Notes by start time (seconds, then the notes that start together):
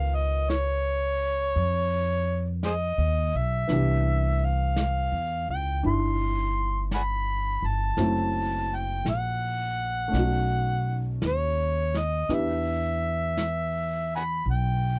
Already playing: C#2 D#3 B3 F4 A#4 F5
0.15 D#5
0.49 C#5, brush sweep, snare, hi-hat pedal
1.56 F2, brush sweep
2.63 G#4 C5 D#5, brush sweep, snare, hi-hat pedal
2.98 D#2
3.34 B1 E5
3.67 C2 E3 B3 D4, brush sweep, snare
3.73 G4
4.45 F5
4.76 brush sweep, snare, hi-hat pedal
5.12 E2
5.48 C#2 G5
5.83 G1 D4 E4 C6, brush sweep
6.91 F#5 G#5 B5, brush sweep, snare, hi-hat pedal
7.62 G1 A5
7.97 F#1 F#3 A3 C4 E4, brush sweep, snare
8.75 G5
9.05 A#1, brush sweep, snare, hi-hat pedal
9.09 F#5
10.08 A3 C#4
10.13 B1 D#4, brush sweep, snare
10.18 F#4
11.21 D#2, brush sweep, snare, hi-hat pedal
11.25 C#5
11.94 D#5, snare
12.29 E2 B3 D4 E4 G4, brush sweep, snare
12.34 E5
13.37 brush sweep, snare, hi-hat pedal
14.16 F#5 G#5 B5
14.45 B1, brush sweep
14.51 G5